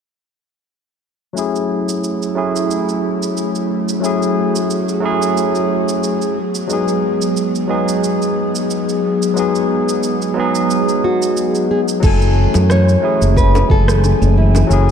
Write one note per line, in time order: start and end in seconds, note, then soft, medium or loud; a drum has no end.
1.33 2.31 F#3 medium
1.33 2.32 A3 medium
1.33 2.33 C#4 medium
1.33 12.00 G#4 medium
1.37 12.00 F#3 medium
1.37 6.33 A3 medium
1.37 4.01 E4 medium
1.37 2.34 E4 medium
1.37 2.34 G#4 medium
1.37 cabasa soft
1.56 cabasa soft
1.89 cabasa medium
2.04 cabasa medium
2.22 cabasa soft
2.35 2.60 F#3 medium
2.35 2.60 A3 medium
2.35 2.60 C#4 medium
2.35 2.61 E4 medium
2.35 2.61 G#4 medium
2.56 cabasa medium
2.71 cabasa soft
2.89 cabasa soft
3.23 cabasa medium
3.37 cabasa soft
3.55 cabasa soft
3.89 cabasa medium
4.00 4.98 F#3 medium
4.00 4.99 A3 medium
4.00 5.00 C#4 medium
4.00 5.00 E4 medium
4.00 6.35 F#4 medium
4.04 5.01 G#4 medium
4.04 cabasa medium
4.23 cabasa soft
4.56 cabasa medium
4.70 cabasa soft
4.89 cabasa soft
5.00 6.33 F#3 medium
5.00 6.34 A3 medium
5.00 6.35 C#4 medium
5.04 6.36 E4 medium
5.04 6.36 G#4 medium
5.22 cabasa medium
5.37 cabasa soft
5.55 cabasa soft
5.89 cabasa medium
6.04 cabasa medium
6.22 cabasa soft
6.37 12.00 B3 medium
6.55 cabasa medium
6.67 7.65 F#3 medium
6.67 7.66 G#3 medium
6.67 7.66 B3 medium
6.67 7.67 D#4 medium
6.67 cabasa medium
6.73 7.68 G#4 medium
6.88 cabasa soft
7.22 cabasa medium
7.37 cabasa medium
7.55 cabasa soft
7.68 7.93 F#3 medium
7.68 7.93 G#3 medium
7.68 7.94 B3 medium
7.68 7.94 D#4 medium
7.68 7.94 G#4 medium
7.88 cabasa medium
8.04 cabasa medium
8.22 cabasa soft
8.55 cabasa medium
8.70 cabasa medium
8.89 cabasa soft
9.22 cabasa medium
9.33 10.31 F#3 medium
9.33 10.32 G#3 medium
9.33 10.33 B3 medium
9.33 cabasa medium
9.38 10.34 D#4 medium
9.38 10.34 G#4 medium
9.55 cabasa soft
9.89 cabasa medium
10.03 cabasa medium
10.22 cabasa soft
10.34 11.98 F#3 medium
10.34 11.99 G#3 medium
10.34 12.00 B3 medium
10.38 12.00 D#4 medium
10.38 12.01 G#4 medium
10.55 cabasa medium
10.70 cabasa medium
10.89 cabasa soft
11.04 11.70 F#4 medium
11.22 cabasa medium
11.37 cabasa medium
11.55 cabasa soft
11.71 11.80 G#4 medium
11.88 cabasa medium
12.00 12.45 F#1 medium
12.00 14.91 E3 medium
12.00 12.98 F#3 medium
12.00 12.99 A3 medium
12.00 13.00 C#4 medium
12.00 12.71 A4 loud
12.00 14.91 G#5 medium
12.00 kick loud
12.00 crash medium
12.00 cabasa medium
12.04 14.91 A3 medium
12.04 13.01 E4 medium
12.04 13.01 G#5 medium
12.22 cabasa soft
12.54 12.96 F#2 medium
12.54 high bongo medium
12.54 cabasa medium
12.70 13.34 C#5 loud
12.70 cross-stick medium
12.70 cabasa medium
12.89 cabasa soft
13.02 13.27 F#3 medium
13.02 13.27 A3 medium
13.02 13.27 C#4 medium
13.02 13.27 E4 medium
13.02 13.28 G#4 medium
13.22 13.62 F#1 medium
13.22 cabasa medium
13.37 13.68 B4 loud
13.37 kick medium
13.37 cabasa soft
13.55 high bongo medium
13.55 cabasa soft
13.70 14.12 F#1 medium
13.70 14.33 A4 medium
13.70 kick medium
13.88 cross-stick medium
13.88 cabasa medium
14.04 high bongo medium
14.04 cabasa medium
14.22 14.62 F#1 medium
14.22 cabasa soft
14.38 14.91 E4 medium
14.55 high bongo medium
14.55 cabasa medium
14.67 14.91 F#1 medium
14.67 14.91 F#3 medium
14.67 14.91 A3 medium
14.67 14.91 C#4 medium
14.67 cabasa medium
14.72 14.91 E4 medium
14.72 14.91 G#4 medium